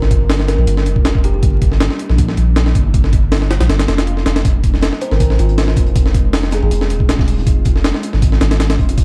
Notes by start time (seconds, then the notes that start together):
Already playing: G1 G3 A#3 D4 F4
0.02 A#4, snare
0.11 kick, closed hi-hat
0.30 snare, open hi-hat
0.40 snare
0.48 A#4, snare, closed hi-hat
0.58 A#1 A#4
0.67 G1, closed hi-hat
0.77 snare
0.86 F1, closed hi-hat
0.96 kick
1.05 snare, closed hi-hat
1.15 kick
1.24 G4, closed hi-hat
1.34 G4
1.42 G1 E4, kick, closed hi-hat
1.62 kick, closed hi-hat
1.72 snare
1.80 snare, closed hi-hat
1.91 snare
1.99 closed hi-hat
2.09 A#1, snare
2.18 kick, closed hi-hat
2.29 snare
2.37 A#1, closed hi-hat
2.56 snare, closed hi-hat
2.66 snare
2.75 G1, kick, closed hi-hat
2.94 kick, closed hi-hat
3.04 snare
3.13 kick, closed hi-hat
3.32 snare, open hi-hat
3.42 snare
3.51 snare, closed hi-hat
3.60 A#1, snare, closed hi-hat
3.69 G1, snare, closed hi-hat, swell
3.79 snare, closed hi-hat
3.88 F1, snare, closed hi-hat
3.98 snare, closed hi-hat
4.07 closed hi-hat
4.17 snare
4.26 F1, snare, closed hi-hat
4.36 snare, closed hi-hat
4.45 F1 G#3 C4 D#4 F4, kick, closed hi-hat
4.63 kick, closed hi-hat
4.74 snare
4.81 snare, closed hi-hat
4.93 snare
5.01 C5, closed hi-hat
5.11 G#1 A#4, snare
5.20 A#4, kick, closed hi-hat
5.30 snare
5.39 G#1 F4, closed hi-hat
5.49 closed hi-hat
5.58 snare, closed hi-hat
5.68 snare
5.76 F1, kick, closed hi-hat
5.86 closed hi-hat
5.96 kick, closed hi-hat
6.06 snare
6.14 kick, closed hi-hat
6.33 snare, closed hi-hat, open hi-hat
6.43 snare
6.51 G#4, snare, closed hi-hat
6.62 G#1 G#4
6.71 F1, closed hi-hat
6.81 snare
6.90 D#1, closed hi-hat
7.00 kick
7.09 snare, closed hi-hat
7.19 kick, snare
7.28 closed hi-hat, open hi-hat
7.37 snare
7.47 F1 D4, kick, closed hi-hat
7.65 kick, closed hi-hat
7.76 snare
7.84 snare, closed hi-hat
7.95 snare
8.03 closed hi-hat
8.13 G#1, snare
8.22 kick, closed hi-hat
8.32 snare
8.41 G#1, snare, closed hi-hat
8.51 snare, closed hi-hat
8.60 snare, closed hi-hat
8.70 snare, closed hi-hat
8.79 F1, kick, closed hi-hat
8.89 closed hi-hat
8.98 kick, closed hi-hat